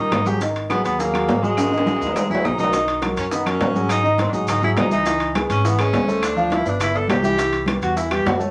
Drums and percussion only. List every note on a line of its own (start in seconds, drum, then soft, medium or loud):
0.11 high bongo medium
0.11 low bongo medium
0.11 high conga medium
0.11 high timbale medium
0.11 low timbale medium
0.11 claves medium
0.11 maracas soft
0.26 high conga medium
0.26 maracas medium
0.41 high bongo medium
0.41 high conga soft
0.41 high timbale medium
0.41 maracas medium
0.55 high bongo soft
0.55 high conga soft
0.55 high timbale medium
0.55 maracas soft
0.70 high bongo medium
0.70 high conga medium
0.70 high timbale medium
0.70 low timbale medium
0.70 claves medium
0.70 maracas soft
0.85 high bongo soft
0.85 high timbale medium
0.85 maracas medium
0.99 high bongo medium
0.99 high conga soft
0.99 maracas medium
1.14 high bongo soft
1.14 high conga soft
1.14 high timbale medium
1.14 claves medium
1.14 maracas soft
1.28 high bongo medium
1.28 low bongo medium
1.28 high conga medium
1.28 high timbale medium
1.28 low timbale medium
1.28 maracas soft
1.43 high conga medium
1.43 maracas medium
1.57 high bongo medium
1.57 high conga soft
1.57 high timbale medium
1.57 claves medium
1.57 maracas medium
1.68 high timbale medium
1.72 high bongo soft
1.72 high conga soft
1.72 maracas soft
1.78 high timbale medium
1.86 high bongo medium
1.86 high conga medium
1.86 high timbale medium
1.86 maracas soft
1.96 high timbale medium
2.01 high bongo soft
2.01 high conga soft
2.01 maracas medium
2.07 low timbale medium
2.15 high bongo medium
2.15 high conga medium
2.15 low timbale medium
2.15 claves medium
2.15 maracas medium
2.31 high bongo soft
2.31 maracas soft
2.35 low timbale medium
2.44 high bongo medium
2.44 low bongo medium
2.44 low timbale medium
2.44 claves medium
2.44 maracas soft
2.58 low conga medium
2.58 maracas medium
2.63 low timbale medium
2.72 high bongo medium
2.72 high conga soft
2.72 high timbale medium
2.72 maracas medium
2.87 high bongo soft
2.87 high conga soft
2.87 high timbale medium
2.87 maracas soft
3.02 high bongo medium
3.02 high conga medium
3.02 high timbale medium
3.02 low timbale medium
3.02 claves medium
3.02 maracas soft
3.17 high bongo soft
3.17 high timbale medium
3.17 maracas medium
3.31 high bongo medium
3.31 high conga soft
3.31 maracas medium
3.45 high bongo soft
3.45 high conga soft
3.45 high timbale medium
3.45 claves medium
3.45 maracas soft
3.60 high bongo medium
3.60 low bongo medium
3.60 high conga medium
3.60 high timbale medium
3.60 low timbale medium
3.60 maracas soft
3.74 high conga medium
3.74 maracas medium
3.89 high bongo medium
3.89 high conga soft
3.89 high timbale medium
3.89 claves medium
3.89 maracas medium
4.03 high bongo soft
4.03 high conga soft
4.03 maracas soft
4.18 high bongo medium
4.18 high conga medium
4.18 high timbale medium
4.18 low timbale medium
4.18 maracas soft
4.33 high bongo soft
4.33 maracas medium
4.48 high bongo medium
4.48 high conga soft
4.48 low conga medium
4.48 high timbale medium
4.48 claves medium
4.48 maracas medium
4.62 high bongo soft
4.62 high conga soft
4.62 maracas soft
4.77 high bongo medium
4.77 low bongo medium
4.77 high conga medium
4.77 high timbale loud
4.77 low timbale medium
4.77 claves medium
4.77 maracas soft
4.91 high conga medium
4.91 maracas medium
5.06 high bongo medium
5.06 high timbale medium
5.06 maracas medium
5.20 high bongo soft
5.20 high conga soft
5.20 high timbale medium
5.20 maracas soft
5.35 high bongo medium
5.35 high conga medium
5.35 high timbale medium
5.35 low timbale medium
5.35 claves medium
5.35 maracas soft
5.50 high bongo soft
5.50 high conga soft
5.50 high timbale medium
5.50 maracas medium
5.65 high bongo medium
5.65 high conga soft
5.65 maracas medium
5.79 high bongo soft
5.79 high conga soft
5.79 high timbale medium
5.79 claves medium
5.79 maracas soft
5.93 high bongo medium
5.93 low bongo medium
5.93 high conga medium
5.93 high timbale medium
5.93 low timbale medium
5.93 maracas soft
6.07 high conga medium
6.07 maracas medium
6.22 high bongo medium
6.22 high conga soft
6.22 high timbale medium
6.22 claves medium
6.22 maracas medium
6.36 high bongo soft
6.36 high conga soft
6.36 maracas soft
6.50 high bongo medium
6.50 high conga medium
6.50 high timbale medium
6.50 low timbale medium
6.50 maracas soft
6.66 high bongo soft
6.66 maracas medium
6.80 high bongo medium
6.80 high conga soft
6.80 low conga medium
6.80 high timbale medium
6.80 claves medium
6.80 maracas medium
6.94 high bongo soft
6.94 high conga soft
6.94 low conga medium
6.94 maracas soft
7.08 high bongo medium
7.08 low bongo medium
7.08 high conga medium
7.08 high timbale medium
7.08 low timbale medium
7.08 claves medium
7.08 maracas soft
7.22 high conga medium
7.22 maracas medium
7.39 high bongo medium
7.39 high timbale medium
7.39 maracas medium
7.52 high bongo soft
7.52 high conga soft
7.52 high timbale medium
7.52 maracas soft
7.66 high bongo medium
7.66 high conga medium
7.66 high timbale medium
7.66 low timbale medium
7.66 claves medium
7.66 maracas soft
7.82 high bongo soft
7.82 high timbale medium
7.82 maracas medium
7.96 high bongo medium
7.96 high conga soft
7.96 maracas medium
8.11 high bongo soft
8.11 high conga soft
8.11 high timbale medium
8.11 claves medium
8.11 maracas soft
8.25 high bongo medium
8.25 low bongo medium
8.25 high conga medium
8.25 high timbale medium
8.25 low timbale medium
8.25 maracas soft
8.40 high conga medium
8.40 maracas medium